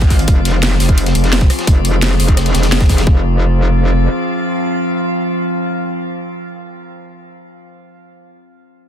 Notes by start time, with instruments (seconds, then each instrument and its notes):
Already playing: wobble bass G#1, synth drone F3 C4 F4 F5
0.02 kick
0.10 kick, snare, closed hi-hat, open hi-hat
0.19 closed hi-hat
0.28 wobble bass F1, synth drone G#4, kick, closed hi-hat
0.45 snare, closed hi-hat
0.62 snare, closed hi-hat
0.71 cross-stick, snare
0.80 wobble bass F1, snare, closed hi-hat, open hi-hat
0.89 kick, closed hi-hat
0.98 closed hi-hat
1.06 snare, closed hi-hat
1.15 wobble bass F1, closed hi-hat
1.24 snare, closed hi-hat
1.33 snare, closed hi-hat
1.41 kick, snare
1.50 cross-stick, closed hi-hat, open hi-hat
1.59 snare, closed hi-hat
1.67 wobble bass F1, kick, closed hi-hat
1.85 closed hi-hat
2.02 snare, closed hi-hat
2.11 cross-stick
2.20 wobble bass F1, closed hi-hat, open hi-hat
2.28 kick, closed hi-hat
2.37 cross-stick, snare, closed hi-hat
2.45 snare, closed hi-hat
2.54 wobble bass F1, snare, closed hi-hat
2.63 snare, closed hi-hat
2.72 snare, closed hi-hat
2.81 kick, cross-stick, snare, closed hi-hat
2.89 kick, snare, closed hi-hat, open hi-hat
2.98 snare, closed hi-hat
3.07 wobble bass F1, synth drone F3 C4 F4 F5, kick